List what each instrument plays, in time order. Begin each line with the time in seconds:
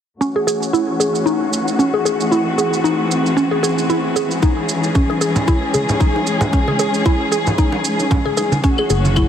0.21 string section E3 A3 C#4 F#4, synth pluck C#4, shaker
0.36 synth pluck G#4
0.47 synth pluck G#4, shaker
0.63 shaker
0.73 synth pluck E4, shaker
1.00 synth pluck G#4, shaker
1.15 shaker
1.26 synth pluck D#4, shaker
1.53 shaker
1.68 shaker
1.79 synth pluck C#4, shaker
1.94 synth pluck G#4
2.05 synth pluck G#4, shaker
2.21 shaker
2.32 string section C4, synth pluck E4, shaker
2.58 synth pluck G#4, shaker
2.73 shaker
2.84 synth pluck D#4, shaker
3.11 shaker
3.26 shaker
3.37 synth pluck C#4, shaker
3.51 synth pluck G#4
3.63 synth pluck G#4, shaker
3.78 shaker
3.90 synth pluck E4, shaker
4.16 synth pluck G#4, shaker
4.31 shaker
4.42 string section G#3 C#4 G#4, synth pluck D#4, kick, shaker
4.69 shaker
4.84 shaker
4.95 synth pluck C#4, kick, shaker
5.10 synth pluck G#4, high bongo
5.21 synth pluck G#4, shaker
5.36 low conga, shaker
5.48 synth pluck E4, kick, shaker
5.74 synth pluck G#4, high conga, shaker
5.89 low conga, shaker
6.00 synth pluck D#4, kick, shaker
6.16 high bongo
6.27 shaker
6.41 low conga, shaker
6.53 synth pluck C#4, kick, shaker
6.68 synth pluck G#4, high conga
6.79 synth pluck G#4, shaker
6.94 shaker
7.06 synth pluck E4, kick, shaker
7.32 synth pluck G#4, shaker
7.47 low conga, shaker
7.58 synth pluck D#4, kick, shaker
7.72 high bongo
7.84 shaker
8.00 high bongo, shaker
8.11 synth pluck C#4, kick, low conga, shaker
8.25 synth pluck G#4, high conga
8.37 synth pluck G#4, high bongo, shaker
8.52 high bongo, high conga, shaker
8.64 string section E3 A3 C#4 F#4, synth pluck C#4, kick, shaker
8.78 synth pluck G#4, claves
8.90 analog synth bass F#1, synth pluck G#4, shaker
9.05 high conga, shaker
9.16 synth pluck E4, kick, claves, shaker